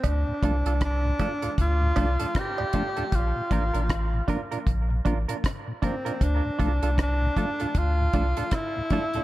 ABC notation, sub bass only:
X:1
M:4/4
L:1/16
Q:"Swing 16ths" 1/4=78
K:Dm
V:1 name="Sub bass" clef=bass
D,, z C,, C,,3 z2 D,,2 C,, z4 z | B,,, z A,,, A,,,3 z2 B,,,2 A,,, z4 z | D,, z C,, C,,3 z2 D,,2 C,, z4 z |]